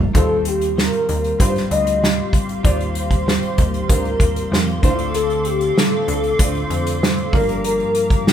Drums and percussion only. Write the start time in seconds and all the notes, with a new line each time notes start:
0.15 kick, closed hi-hat
0.45 closed hi-hat
0.61 closed hi-hat
0.78 snare
0.93 closed hi-hat
1.09 closed hi-hat
1.24 closed hi-hat
1.40 kick, closed hi-hat
1.56 snare, closed hi-hat
1.71 closed hi-hat
1.87 closed hi-hat
2.04 snare
2.33 kick, closed hi-hat
2.49 closed hi-hat
2.65 kick, closed hi-hat
2.80 closed hi-hat
2.95 closed hi-hat
3.11 kick, closed hi-hat
3.28 snare
3.42 closed hi-hat
3.58 kick, closed hi-hat
3.74 closed hi-hat
3.89 kick, closed hi-hat
4.05 closed hi-hat
4.20 kick, closed hi-hat
4.36 closed hi-hat
4.53 snare
4.67 closed hi-hat
4.83 kick, closed hi-hat
4.99 closed hi-hat
5.14 closed hi-hat
5.30 closed hi-hat
5.45 closed hi-hat
5.61 closed hi-hat
5.78 snare
6.08 closed hi-hat
6.24 closed hi-hat
6.39 kick, closed hi-hat
6.55 closed hi-hat
6.71 closed hi-hat
6.87 closed hi-hat
7.03 snare
7.17 closed hi-hat
7.33 kick, open hi-hat
7.49 closed hi-hat
7.64 closed hi-hat
7.80 closed hi-hat
7.95 closed hi-hat
8.10 kick, closed hi-hat
8.27 snare